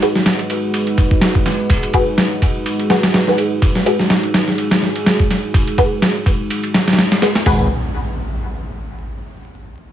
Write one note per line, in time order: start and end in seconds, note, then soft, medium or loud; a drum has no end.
0.00 7.42 G#3 medium
0.00 7.42 D#4 medium
0.00 7.42 F#4 medium
0.00 0.12 F#4 medium
0.00 0.12 G#4 medium
0.00 3.61 B4 medium
0.00 0.12 B4 medium
0.00 ride medium
0.15 snare medium
0.26 snare loud
0.26 ride medium
0.39 ride soft
0.50 ride medium
0.74 ride medium
0.87 ride soft
0.98 kick loud
0.98 ride medium
1.11 kick medium
1.21 snare loud
1.21 ride medium
1.35 kick medium
1.46 snare soft
1.46 ride medium
1.70 kick loud
1.70 ride medium
1.83 ride soft
1.94 2.04 F#4 loud
1.94 2.04 G#4 medium
1.94 2.04 B4 loud
1.94 kick loud
1.94 ride medium
2.18 snare loud
2.18 ride medium
2.42 kick loud
2.42 ride medium
2.66 ride medium
2.79 ride soft
2.90 3.24 F#4 medium
2.90 3.24 G#4 medium
2.90 3.24 B4 medium
2.90 snare loud
2.90 ride medium
3.03 snare loud
3.03 ride medium
3.14 snare loud
3.14 ride medium
3.27 3.41 F#4 medium
3.27 3.41 G#4 medium
3.27 3.41 B4 medium
3.27 snare medium
3.38 ride medium
3.62 7.45 G#4 medium
3.62 kick loud
3.62 ride medium
3.75 snare medium
3.86 3.96 F#4 medium
3.86 3.96 G#4 medium
3.86 3.96 B4 medium
3.86 ride medium
4.00 snare medium
4.10 snare loud
4.10 ride medium
4.23 ride soft
4.34 snare loud
4.34 ride medium
4.48 snare soft
4.58 ride medium
4.71 snare loud
4.71 ride medium
4.82 snare soft
4.95 ride medium
5.06 snare loud
5.06 ride medium
5.20 kick medium
5.30 snare soft
5.30 ride medium
5.54 kick loud
5.54 ride medium
5.68 ride soft
5.78 5.88 F#4 loud
5.78 5.88 G#4 medium
5.78 5.88 B4 loud
5.78 kick medium
5.78 ride medium
6.02 snare loud
6.02 ride medium
6.26 kick medium
6.26 ride medium
6.50 ride medium
6.63 ride soft
6.74 snare loud
6.74 ride medium
6.88 snare medium
6.88 ride medium
6.93 snare medium
6.93 ride medium
6.98 snare loud
6.98 ride medium
7.12 snare loud
7.12 ride medium
7.22 7.32 F#4 medium
7.22 7.32 G#4 medium
7.22 7.32 B4 loud
7.22 snare loud
7.22 ride medium
7.35 snare loud
7.35 ride medium
7.46 7.69 G#1 loud
7.46 7.69 G#3 medium
7.46 7.65 F#4 medium
7.46 7.65 G#4 medium
7.46 7.65 B4 medium
7.46 kick loud
7.46 floor tom loud
7.46 open hi-hat medium
7.46 impact medium